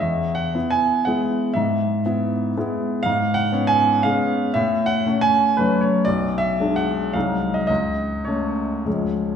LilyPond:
<<
  \new Staff \with { instrumentName = "Grand piano" } { \time 3/4 \key e \major \tempo 4 = 117 \tuplet 3/2 { e''4 fis''8~ fis''8 gis''4 } fis''4 | e''4. r4. | \key cis \phrygian \tuplet 3/2 { eis''4 fis''8~ fis''8 gis''4 } eis''4 | \tuplet 3/2 { e''4 fis''8~ fis''8 gis''4 } b'8 cis''8 |
\tuplet 3/2 { d''4 e''8~ e''8 fis''4 } eis''8. dis''16 | dis''4 cis''4. r8 | }
  \new Staff \with { instrumentName = "Grand piano" } { \time 3/4 \key e \major e,4 <b e'>4 <gis b e'>4 | gis,4 <b e'>4 <gis b e'>4 | \key cis \phrygian gis,4 <b cis'>4 <gis b cis'>4 | a,4 <a cis'>4 <fis a cis'>4 |
b,,4 <gis d'>4 <bis,, fis gis dis'>4 | cis,4 <a cis'>4 <cis, eis gis cis'>4 | }
>>